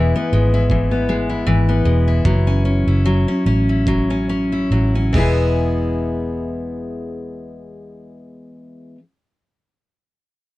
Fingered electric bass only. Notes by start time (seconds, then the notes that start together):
Already playing: E1
0.32 G#1
1.47 G#1
1.85 E1
2.25 F#1
2.87 F#1
3.45 A1
4.71 A1
5.14 E1